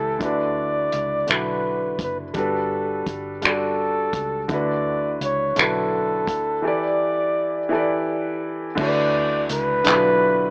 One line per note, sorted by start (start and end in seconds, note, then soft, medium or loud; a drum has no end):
0.00 0.17 C#2 loud
0.00 0.23 E3 medium
0.00 0.21 E4 medium
0.00 0.23 G4 medium
0.00 0.23 A4 medium
0.00 0.24 A4 loud
0.00 0.23 B4 medium
0.00 0.23 D5 medium
0.19 0.89 D2 medium
0.19 1.15 D3 medium
0.19 1.15 D4 medium
0.19 1.16 E4 medium
0.19 kick loud
0.19 closed hi-hat medium
0.23 1.17 F#4 medium
0.23 1.18 B4 medium
0.23 1.32 D5 loud
0.92 1.25 C#2 medium
0.92 closed hi-hat medium
1.27 1.96 B1 medium
1.27 2.22 D3 medium
1.27 2.23 D4 medium
1.27 2.24 E4 medium
1.27 2.24 F#4 medium
1.27 2.01 B4 medium
1.27 closed hi-hat medium
1.31 2.25 B4 medium
1.31 finger snap loud
1.99 2.31 F#1 medium
1.99 kick medium
1.99 closed hi-hat medium
2.03 2.18 B4 medium
2.34 3.03 G1 medium
2.34 3.30 G3 medium
2.34 3.30 D4 medium
2.34 3.31 F#4 medium
2.34 kick loud
2.34 closed hi-hat medium
2.38 3.13 A4 medium
2.38 3.32 A4 medium
2.38 3.32 B4 medium
3.06 4.10 G1 medium
3.06 kick medium
3.06 closed hi-hat medium
3.42 4.37 G3 medium
3.42 4.38 D4 medium
3.42 4.38 F#4 medium
3.42 4.39 A4 medium
3.42 finger snap loud
3.42 closed hi-hat medium
3.46 4.48 A4 medium
3.46 4.40 D5 medium
4.13 4.46 C#2 medium
4.13 kick medium
4.13 closed hi-hat medium
4.48 5.17 D2 loud
4.48 5.44 D3 medium
4.48 5.44 D4 medium
4.48 5.45 E4 medium
4.48 kick loud
4.48 closed hi-hat medium
4.52 5.46 F#4 medium
4.52 5.47 B4 medium
4.52 5.19 D5 medium
5.21 5.53 C#2 medium
5.21 5.62 C#5 medium
5.21 closed hi-hat medium
5.55 6.28 B1 medium
5.55 6.51 D3 medium
5.55 6.52 D4 medium
5.55 6.53 E4 medium
5.55 6.53 F#4 medium
5.55 finger snap loud
5.55 closed hi-hat medium
5.60 6.70 A4 medium
5.60 6.54 B4 medium
6.27 6.60 D2 medium
6.27 kick medium
6.27 closed hi-hat medium
6.62 7.58 E3 medium
6.62 7.58 E4 medium
6.62 7.59 G4 medium
6.62 7.59 A4 medium
6.66 7.60 B4 medium
6.66 7.61 D5 medium
6.66 8.09 D5 medium
7.69 8.65 E3 medium
7.69 8.66 E4 medium
7.69 8.66 G4 medium
7.69 8.67 A4 medium
7.74 8.67 B4 medium
7.74 8.68 D5 medium
8.75 9.46 D2 loud
8.75 9.72 D3 medium
8.75 9.73 D4 medium
8.75 9.73 E4 medium
8.75 kick loud
8.75 crash loud
8.80 9.74 F#4 medium
8.80 8.86 A4 medium
8.80 9.47 D5 loud
8.87 9.78 B4 medium
9.49 9.82 C#2 medium
9.49 10.50 B4 loud
9.49 closed hi-hat medium
9.84 10.50 B1 loud
9.84 10.50 D3 medium
9.84 10.50 D4 medium
9.84 10.50 E4 medium
9.84 closed hi-hat medium
9.88 9.93 F4 medium
9.88 10.50 B4 medium
9.88 clap loud
9.94 10.50 F#4 medium